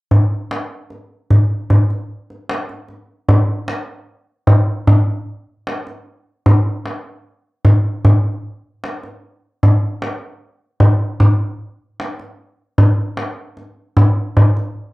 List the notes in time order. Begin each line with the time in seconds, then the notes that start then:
0.11 tombak dum
0.51 tombak tek
0.90 tombak ka
1.30 tombak dum
1.70 tombak dum
1.90 tombak ka
2.30 tombak ka
2.49 tombak tek
2.69 tombak ka
2.88 tombak ka
3.29 tombak dum
3.68 tombak tek
4.47 tombak dum
4.87 tombak dum
5.67 tombak tek
5.87 tombak ka
6.46 tombak dum
6.86 tombak tek
7.65 tombak dum
8.05 tombak dum
8.84 tombak tek
9.03 tombak ka
9.63 tombak dum
10.02 tombak tek
10.80 tombak dum
11.20 tombak dum
12.00 tombak tek
12.19 tombak ka
12.78 tombak dum
13.17 tombak tek
13.57 tombak ka
13.97 tombak dum
14.37 tombak dum
14.57 tombak ka